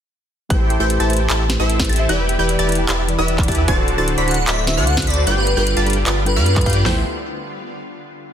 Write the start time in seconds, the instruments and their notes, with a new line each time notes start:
0.49 sub bass A1, ambient pad C3 G3 A3 E4, tine electric piano A3 E4 G4 B4 C5, supersaw synth E4 G4 A4 C5 G5, synth pluck G6, kick, closed hi-hat
0.60 synth arpeggio sound G4
0.70 synth arpeggio sound G4, closed hi-hat
0.79 sub bass A1, tine electric piano A3 E4 G4 B4 C5, supersaw synth E4 G4 A4 C5 G5, synth arpeggio sound A4, synth pluck G6
0.90 closed hi-hat
1.00 sub bass A1, supersaw synth E4 G4 A4 C5 A5, synth arpeggio sound E5, synth pluck A6, closed hi-hat
1.09 tine electric piano A3 E4 G4 B4 C5, synth arpeggio sound A5, closed hi-hat
1.13 closed hi-hat
1.17 synth arpeggio sound G5, closed hi-hat
1.30 sub bass A1, supersaw synth E4 G4 A4 C5 A5, synth pluck A6, clap, closed hi-hat
1.40 synth arpeggio sound E5
1.49 tine electric piano A3 E4 G4 B4 C5, synth arpeggio sound G4, snare, closed hi-hat
1.60 sub bass A1, supersaw synth E4 G4 A4 C5 E5, synth arpeggio sound A4, synth pluck E6
1.70 closed hi-hat
1.78 tine electric piano A3 E4 G4 B4 C5, synth arpeggio sound G4, kick, snare, closed hi-hat
1.85 closed hi-hat
1.89 sub bass A1, supersaw synth E4 G4 A4 C5 A5, synth arpeggio sound G4, synth pluck A6, closed hi-hat
1.93 closed hi-hat
1.96 synth arpeggio sound E5, closed hi-hat
2.08 sub bass E1, ambient pad D3 B3, tine electric piano E3 E4 G4 B4 D5, supersaw synth E4 G4 B4 D5 G5, synth pluck G6, closed hi-hat
2.19 synth arpeggio sound G4
2.29 synth arpeggio sound G4, closed hi-hat
2.38 sub bass E1, tine electric piano E3 E4 G4 B4 D5, supersaw synth E4 G4 B4 D5 G5, synth arpeggio sound B4, synth pluck G6
2.49 closed hi-hat
2.59 sub bass E1, supersaw synth E4 G4 B4 D5 A5, synth arpeggio sound E5, synth pluck A6, closed hi-hat
2.68 tine electric piano E3 E4 G4 B4 D5, synth arpeggio sound B5, closed hi-hat
2.72 closed hi-hat
2.75 synth arpeggio sound G5, closed hi-hat
2.89 sub bass E1, supersaw synth E4 G4 B4 D5 A5, synth pluck A6, clap, closed hi-hat
2.98 synth arpeggio sound E5
3.08 tine electric piano E3 E4 G4 B4 D5, synth arpeggio sound G4, closed hi-hat
3.19 sub bass E1, supersaw synth E4 G4 B4 D5 E5, synth arpeggio sound B4, synth pluck E6
3.28 closed hi-hat
3.37 tine electric piano E3 E4 G4 B4 D5, synth arpeggio sound G4, kick, clap, closed hi-hat
3.43 closed hi-hat
3.48 sub bass E2, supersaw synth E4 G4 B4 D5 A5, synth arpeggio sound G4, synth pluck A6, kick, closed hi-hat
3.52 closed hi-hat
3.55 synth arpeggio sound E5, closed hi-hat
3.67 sub bass D1, tine electric piano D3 D4 E4 F#4 C5, ambient pad A3 C4 F#4, supersaw synth F#4 A4 C5 D5 A5, synth pluck A6, kick, closed hi-hat
3.78 synth arpeggio sound F#4
3.88 synth arpeggio sound F#4, closed hi-hat
3.97 sub bass D1, tine electric piano D3 D4 E4 F#4 C5, supersaw synth F#4 A4 C5 D5 A5, synth arpeggio sound A4, synth pluck A6
4.08 closed hi-hat
4.18 sub bass D1, supersaw synth F#4 A4 C5 D5 B5, synth arpeggio sound D5, synth pluck B6, closed hi-hat
4.27 tine electric piano D3 D4 E4 F#4 C5, digital synth lead F#5, synth arpeggio sound A5, closed hi-hat
4.31 closed hi-hat
4.34 digital synth lead F#5, synth arpeggio sound F#5, closed hi-hat
4.47 sub bass D1, supersaw synth F#4 A4 C5 D5 B5, digital synth lead E5, synth pluck B6, clap, closed hi-hat
4.58 synth arpeggio sound D5
4.66 tine electric piano D3 D4 E4 F#4 C5, synth arpeggio sound F#4, digital synth lead E5, snare, closed hi-hat
4.77 sub bass D2, supersaw synth F#4 A4 C5 D5 F#5, synth arpeggio sound A4, synth pluck F#6
4.87 digital synth lead F#5, closed hi-hat
4.96 tine electric piano D3 D4 E4 F#4 C5, synth arpeggio sound F#4, kick, snare, closed hi-hat
5.02 closed hi-hat
5.07 sub bass D2, synth arpeggio sound F#4, supersaw synth F#4 A4 C5 D5 B5, digital synth lead D5, synth pluck B6, closed hi-hat
5.10 closed hi-hat
5.14 synth arpeggio sound D5, closed hi-hat
5.26 sub bass G1, ambient pad D3 G3 B3 F4, tine electric piano G3 D4 F4 A4 B4, supersaw synth F4 G4 B4 D5 G5, synth pluck G6, closed hi-hat
5.37 synth arpeggio sound G4, digital synth lead B4
5.47 synth arpeggio sound G4, closed hi-hat
5.56 sub bass G1, tine electric piano G3 D4 F4 A4 B4, supersaw synth F4 G4 B4 D5 G5, digital synth lead B4, synth arpeggio sound B4, synth pluck G6
5.67 closed hi-hat
5.77 sub bass G1, supersaw synth F4 G4 B4 D5 A5, synth arpeggio sound F5, synth pluck A6, closed hi-hat
5.86 tine electric piano G3 D4 F4 A4 B4, synth arpeggio sound B5, closed hi-hat
5.90 closed hi-hat
5.93 synth arpeggio sound G5, closed hi-hat
6.06 sub bass G1, supersaw synth F4 G4 B4 D5 A5, synth pluck A6, clap, closed hi-hat
6.17 synth arpeggio sound F5
6.25 tine electric piano G3 D4 F4 A4 B4, digital synth lead B4, synth arpeggio sound G5, closed hi-hat
6.36 sub bass G2, supersaw synth F4 G4 B4 D5 F5, synth arpeggio sound B4, digital synth lead B4, synth pluck F6
6.46 closed hi-hat
6.55 tine electric piano G3 D4 F4 A4 B4, synth arpeggio sound D5, kick, clap, closed hi-hat
6.61 closed hi-hat
6.66 sub bass G2, supersaw synth F4 G4 B4 D5 G5, synth arpeggio sound F5, synth pluck G6, kick, closed hi-hat
6.70 closed hi-hat
6.73 synth arpeggio sound D6, closed hi-hat
6.83 sub bass A1, tine electric piano A3 E4 G4, supersaw synth E4 G4 A4 C5 G5, synth arpeggio sound G4, synth pluck G6, snare, floor tom, open hi-hat
6.88 tine electric piano B4 C5